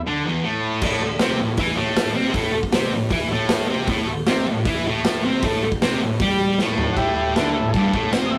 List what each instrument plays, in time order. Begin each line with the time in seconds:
0.07 distorted electric guitar D3 D4
0.26 distorted electric guitar E2 E3
0.44 distorted electric guitar A2 A3
0.82 distorted electric guitar A2 A3, kick, crash
1.03 muted distorted electric guitar stroke
1.19 distorted electric guitar C3 C4, snare, open hi-hat
1.39 distorted electric guitar A2
1.57 distorted electric guitar E3 E4, kick, open hi-hat
1.78 distorted electric guitar A2 A3
1.96 snare, open hi-hat
2.15 distorted electric guitar C3 C4
2.34 distorted electric guitar A2 A3, kick, open hi-hat
2.53 muted distorted electric guitar stroke
2.63 kick
2.72 distorted electric guitar C3 C4, snare, open hi-hat
2.93 distorted electric guitar A2
3.11 distorted electric guitar E3 E4, kick, open hi-hat
3.30 distorted electric guitar A2 A3
3.49 snare, open hi-hat
3.68 distorted electric guitar C3 C4
3.87 distorted electric guitar A2 A3, kick, open hi-hat
4.09 muted distorted electric guitar stroke
4.26 distorted electric guitar C3 C4, snare, open hi-hat
4.47 distorted electric guitar A2
4.65 distorted electric guitar E3 E4, kick, open hi-hat
4.87 distorted electric guitar A2 A3
5.04 snare, open hi-hat
5.24 distorted electric guitar C3 C4
5.42 distorted electric guitar A2 A3, kick, open hi-hat
5.64 muted distorted electric guitar stroke
5.72 kick
5.82 distorted electric guitar C3 C4, snare, open hi-hat
6.01 distorted electric guitar A2
6.20 distorted electric guitar G3 G4, kick, open hi-hat
6.59 distorted electric guitar A2 A3, snare
6.78 floor tom
6.93 transistor combo organ E4 F#4, kick
6.97 distorted electric guitar A2 A3, transistor combo organ G4, crash
7.15 transistor combo organ E4 G4
7.36 distorted electric guitar D3 D4, transistor combo organ E4 A4, snare, crash
7.53 transistor combo organ E4 A4
7.58 distorted electric guitar A2
7.68 transistor combo organ G#4 A4
7.74 distorted electric guitar G2 G3, kick, crash
7.93 distorted electric guitar A2 A3, kick
8.12 distorted electric guitar C3 C4, snare, crash
8.26 transistor combo organ D#5
8.31 transistor combo organ E5, muted distorted electric guitar stroke